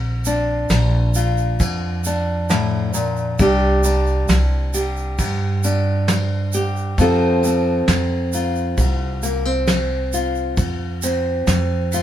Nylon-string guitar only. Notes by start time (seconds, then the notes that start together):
Already playing: A#2
0.27 D4
0.70 F3
1.16 F4
1.60 F3
2.06 D4
2.50 A2
2.94 A#2
3.40 C3 G3 D4 G4
3.85 D4
4.29 G3
4.74 G4
5.19 G2
5.64 D4
6.09 G3
6.54 G4
6.99 F2 F3 C4 F4 A4
7.45 C4
7.89 F3
8.35 F4
8.78 C3
9.23 A#3
9.45 C4
9.68 F3
10.14 F4
10.57 F2
11.03 C4
11.47 F3
11.94 F4